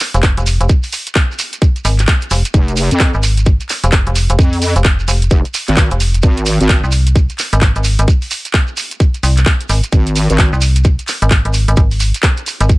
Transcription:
0.00 clap, open hi-hat, shekere
0.14 F1, closed hi-hat, shekere
0.23 kick, clap, shekere
0.37 F1, closed hi-hat, shekere
0.46 open hi-hat, shekere
0.61 F1, closed hi-hat, shekere
0.69 kick, shekere
0.83 open hi-hat, shekere
0.92 open hi-hat, shekere
1.07 closed hi-hat, shekere
1.15 kick, clap, shekere
1.32 shekere
1.39 open hi-hat, shekere
1.53 closed hi-hat, shekere
1.62 kick, shekere
1.76 closed hi-hat, shekere
1.85 G#1, open hi-hat, shekere
1.99 clap, closed hi-hat, shekere
2.08 kick, clap, shekere
2.21 closed hi-hat, shekere
2.31 F1, open hi-hat, shekere
2.45 closed hi-hat, shekere
2.54 F1, kick, shekere
2.68 closed hi-hat, shekere
2.76 open hi-hat, shekere
2.91 F2, closed hi-hat, shekere
3.00 kick, clap, shekere
3.14 G#1, shekere
3.23 open hi-hat, shekere
3.37 closed hi-hat, shekere
3.46 kick, shekere
3.61 closed hi-hat, shekere
3.69 clap, open hi-hat, shekere
3.84 F1, closed hi-hat, shekere
3.92 kick, clap, shekere
4.06 F1, closed hi-hat, shekere
4.15 open hi-hat, shekere
4.29 F1, closed hi-hat, shekere
4.39 F2, kick, shekere
4.52 open hi-hat, shekere
4.62 open hi-hat, shekere
4.76 F1, closed hi-hat, shekere
4.84 kick, clap, shekere
4.99 shekere
5.08 F1, open hi-hat, shekere
5.22 closed hi-hat, shekere
5.30 F1, kick, shekere
5.45 closed hi-hat, shekere
5.54 open hi-hat, shekere
5.67 G#1, clap, closed hi-hat, shekere
5.77 kick, clap, shekere
5.91 F1, closed hi-hat, shekere
6.00 open hi-hat, shekere
6.14 closed hi-hat, shekere
6.22 G#1, kick, shekere
6.37 closed hi-hat, shekere
6.46 open hi-hat, shekere
6.61 G#1, closed hi-hat, shekere
6.69 kick, clap, shekere
6.84 C2, shekere
6.92 open hi-hat, shekere
7.07 closed hi-hat, shekere
7.16 kick, shekere
7.30 closed hi-hat, shekere
7.38 clap, open hi-hat, shekere
7.53 G#1, closed hi-hat, shekere
7.61 kick, clap, shekere
7.76 G#1, closed hi-hat, shekere
7.84 open hi-hat, shekere
7.98 G#1, closed hi-hat, shekere
8.08 kick, shekere
8.22 open hi-hat, shekere
8.31 open hi-hat, shekere
8.45 closed hi-hat, shekere
8.54 kick, clap, shekere
8.67 shekere
8.77 open hi-hat, shekere
8.91 closed hi-hat, shekere
9.00 kick, shekere
9.14 closed hi-hat, shekere
9.23 C2, open hi-hat, shekere
9.37 clap, closed hi-hat, shekere
9.46 kick, clap, shekere
9.60 closed hi-hat, shekere
9.69 G#1, open hi-hat, shekere
9.83 closed hi-hat, shekere
9.92 G#1, kick, shekere
10.07 closed hi-hat, shekere
10.16 open hi-hat, shekere
10.30 G#1, closed hi-hat, shekere
10.38 kick, clap, shekere
10.53 C2, shekere
10.61 open hi-hat, shekere
10.76 closed hi-hat, shekere
10.84 kick, shekere
10.99 closed hi-hat, shekere
11.08 clap, open hi-hat, shekere
11.22 G#1, closed hi-hat, shekere
11.31 kick, clap, shekere
11.45 G#1, closed hi-hat, shekere
11.53 open hi-hat, shekere
11.68 G#1, closed hi-hat, shekere
11.76 G#1, kick, shekere
11.91 open hi-hat, shekere
12.00 open hi-hat, shekere
12.14 closed hi-hat, shekere
12.23 kick, clap, shekere
12.37 closed hi-hat, shekere
12.46 open hi-hat, shekere
12.61 G#1, closed hi-hat, shekere
12.69 kick, shekere

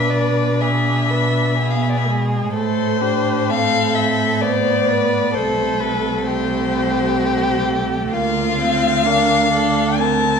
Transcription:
Already playing: B2 D4 B4 E5
0.10 D5
0.61 G#4 E5
1.10 B4
1.59 B3 G#4
1.70 F5
1.82 E5
1.90 D5
1.97 E5
2.08 G#3
2.53 A2 A3 A4 C5
3.01 D4 G4
3.49 C4 A4 F5
3.95 E5
4.41 B3 C5 D5
4.88 B4
5.35 C2 A3 A4 C5
5.80 B4
6.27 A3 G4 C5
8.12 D2 A#3 F4 F5
8.59 C4
9.06 D4 A#4
9.52 D4 A4
9.97 C4 A#4 A5

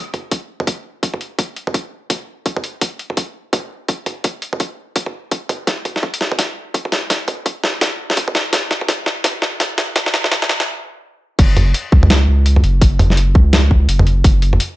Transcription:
0.14 closed hi-hat, mid tom
0.31 kick, closed hi-hat
0.60 mid tom
0.67 kick, closed hi-hat
1.03 kick, closed hi-hat
1.14 mid tom
1.21 closed hi-hat
1.39 kick, closed hi-hat
1.56 closed hi-hat
1.67 mid tom
1.74 kick, closed hi-hat
2.10 kick, closed hi-hat, mid tom
2.46 kick, closed hi-hat
2.57 mid tom
2.64 closed hi-hat
2.81 kick, closed hi-hat
2.99 closed hi-hat
3.10 mid tom
3.17 kick, closed hi-hat
3.53 kick, closed hi-hat, mid tom
3.88 kick, closed hi-hat
4.06 closed hi-hat, mid tom
4.24 kick, closed hi-hat
4.42 closed hi-hat
4.53 mid tom
4.60 kick, closed hi-hat
4.96 kick, closed hi-hat
5.06 mid tom
5.31 kick, closed hi-hat
5.49 closed hi-hat, mid tom
5.67 kick, snare, closed hi-hat
5.85 closed hi-hat, mid tom
5.96 snare
6.03 kick
6.14 closed hi-hat
6.21 snare
6.32 mid tom
6.39 kick, snare, closed hi-hat
6.74 kick, closed hi-hat
6.85 mid tom
6.92 snare, closed hi-hat
7.10 kick, snare, closed hi-hat
7.28 closed hi-hat, mid tom
7.46 kick, closed hi-hat
7.64 snare
7.81 kick, snare, closed hi-hat, mid tom
8.10 snare
8.17 kick, closed hi-hat
8.28 mid tom
8.35 snare, closed hi-hat
8.53 kick, snare, closed hi-hat
8.71 snare, closed hi-hat
8.81 mid tom
8.89 kick, snare, closed hi-hat
9.06 snare
9.24 kick, snare, closed hi-hat, mid tom
9.42 snare
9.60 kick, snare, closed hi-hat
9.78 snare, closed hi-hat, mid tom
9.96 kick, snare, closed hi-hat
10.06 snare
10.14 snare, closed hi-hat
10.24 snare, mid tom
10.32 kick, snare, closed hi-hat
10.42 snare
10.49 snare, closed hi-hat
10.60 snare
11.39 F#1, kick, closed hi-hat, crash
11.57 closed hi-hat, mid tom
11.74 closed hi-hat
11.92 C#2, kick
12.03 mid tom
12.10 snare, closed hi-hat
12.28 C#2
12.46 closed hi-hat
12.56 mid tom
12.64 F#1, closed hi-hat
12.82 kick, closed hi-hat
12.99 closed hi-hat, mid tom
13.10 snare
13.17 closed hi-hat
13.35 C#2, kick
13.53 snare, closed hi-hat, mid tom
13.71 C#2, kick
13.89 F#1, closed hi-hat
13.99 mid tom
14.07 closed hi-hat
14.24 F#1, kick, closed hi-hat
14.42 closed hi-hat
14.53 mid tom
14.60 closed hi-hat

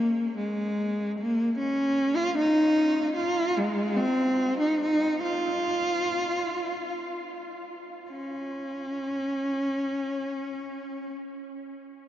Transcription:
Already playing: A#3
0.37 G#3
1.19 A#3
1.58 C#4
2.16 F4
2.38 D#4
3.16 F4
3.57 G#3
3.97 C4
4.60 D#4
4.81 D#4
5.23 F4
8.11 C#4

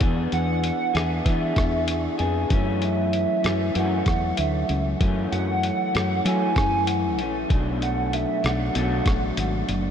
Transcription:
0.00 E2 E3 B3 D4 G#4, kick, closed hi-hat
0.32 E2 F#5, closed hi-hat
0.64 closed hi-hat
0.94 E2 B3 D4 G#4 E5, cross-stick, closed hi-hat
1.25 E3 B3 D4 G#4, kick, closed hi-hat
1.56 E2, kick, cross-stick, closed hi-hat
1.88 closed hi-hat
2.18 F2 B3 D4 G#4, closed hi-hat
2.50 F#2 E3 A3 C#4, kick, closed hi-hat
2.82 E5, closed hi-hat
3.13 closed hi-hat
3.43 F#2 E3 A3 C#4, cross-stick, closed hi-hat
3.73 F#2 E3 A3 F#5, closed hi-hat
3.78 C#4
4.06 E2 F#5, kick, cross-stick, closed hi-hat
4.37 D2 E5, closed hi-hat
4.69 C#2, closed hi-hat
5.00 F#2 E3 A3 C#4, kick, closed hi-hat
5.32 F#2 F#5, closed hi-hat
5.63 closed hi-hat
5.93 F#2 E3 A3 C#4, cross-stick, closed hi-hat
6.24 F#2 E3 F#3 A3 C#4 G#5, closed hi-hat
6.56 F#2 G#5, kick, cross-stick, closed hi-hat
6.86 F#5, closed hi-hat
7.18 A#1 E3 A3 C#4, closed hi-hat
7.49 B1 B2 F#3 A3 D4, kick, closed hi-hat
7.82 F#5, closed hi-hat
8.13 E5, closed hi-hat
8.43 B1 F#3 A3 D4 F#5, cross-stick, closed hi-hat
8.73 B1 B2 F#3 A3, closed hi-hat
8.78 D4
9.06 A1, kick, cross-stick, closed hi-hat
9.37 G#1, closed hi-hat
9.69 F#1, closed hi-hat

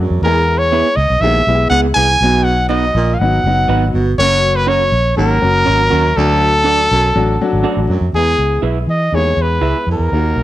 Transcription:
0.00 F#2
0.10 F2
0.22 E2 G#3 B3 E4 G#4 A#4
0.58 C#5
0.72 B3 E4 G#4 B4
0.96 C#2 D#5
1.10 B1
1.21 A#1 D#2 G#3 B3 E4 G#4 E5
1.47 B1 G#3 B3 E4 G4
1.55 G#4
1.70 C#2 B3 E4 G#4 B4 F#5
1.94 C2 E2 B3 E4 G#4 B4 G#5
2.21 B1 B2 F#3 B3 D#4 F#4
2.44 F#5
2.69 B3 D#4 F#4 B4 D#5
2.95 A#1 A#2
3.14 F5
3.19 G#1 F#3 B3 D#4 F#4 F#5
3.44 F#1 F#3 B3 D#4 F#4
3.68 G#1 B3 D#4 F#4 B4
3.94 G1 B2
4.18 F#1 F#2 F#3 A#3 C#4 F#4 C#5
4.56 B4
4.67 C#4 F#4 A#4 C#5
4.92 A#1
5.17 G#1 D#2 F#3 A#3 C#4 F#4 A#4
5.42 F#1 F#3 A#3 C#4 F#4
5.66 G#1 C#4 F#4 A#4 C#5
5.90 D#2 F#2 C#4 F#4 A#4 C#5
6.16 D2 F#3 A3 D4 F#4 A4
6.64 D4 F#4 A4 D5
6.91 B1 F#2
7.15 A1 F#3 A3 D4 F#4
7.41 F#3 A3 D4 F#4
7.53 G#1
7.63 D4 F#4 A4 D5
7.77 A1
7.89 F#2
8.01 F2
8.13 E2 G#3 B3 E4 G#4
8.38 C#2
8.62 B1 E4 G#4 B4 E5
8.87 E3 D#5
9.12 D#2 E2 G#3 B3 E4 G#4 C#5
9.37 E2
9.42 B4
9.61 C#2 E4 G#4 B4 E5
9.87 E2 F2
9.92 A#4
9.99 E2
10.12 D#2 A#3 D#4 F#4 A#4
10.36 B1

